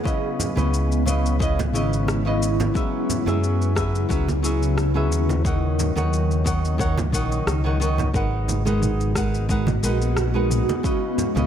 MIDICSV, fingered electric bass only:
0, 0, Header, 1, 2, 480
1, 0, Start_track
1, 0, Key_signature, 5, "minor"
1, 0, Tempo, 674157
1, 41, Time_signature, 4, 2, 24, 8
1, 8164, End_track
2, 0, Start_track
2, 0, Title_t, "Fingered electric bass"
2, 0, Program_c, 0, 33
2, 406, Note_on_c, 0, 37, 82
2, 1239, Note_off_c, 0, 37, 0
2, 1239, Note_on_c, 0, 32, 93
2, 1912, Note_off_c, 0, 32, 0
2, 2326, Note_on_c, 0, 42, 83
2, 2871, Note_off_c, 0, 42, 0
2, 2920, Note_on_c, 0, 37, 82
2, 3639, Note_off_c, 0, 37, 0
2, 3639, Note_on_c, 0, 39, 90
2, 4192, Note_off_c, 0, 39, 0
2, 4246, Note_on_c, 0, 39, 83
2, 5077, Note_off_c, 0, 39, 0
2, 5077, Note_on_c, 0, 34, 76
2, 5258, Note_off_c, 0, 34, 0
2, 5317, Note_on_c, 0, 37, 93
2, 5750, Note_off_c, 0, 37, 0
2, 5796, Note_on_c, 0, 32, 82
2, 6950, Note_off_c, 0, 32, 0
2, 6999, Note_on_c, 0, 34, 85
2, 7552, Note_off_c, 0, 34, 0
2, 8088, Note_on_c, 0, 37, 83
2, 8164, Note_off_c, 0, 37, 0
2, 8164, End_track
0, 0, End_of_file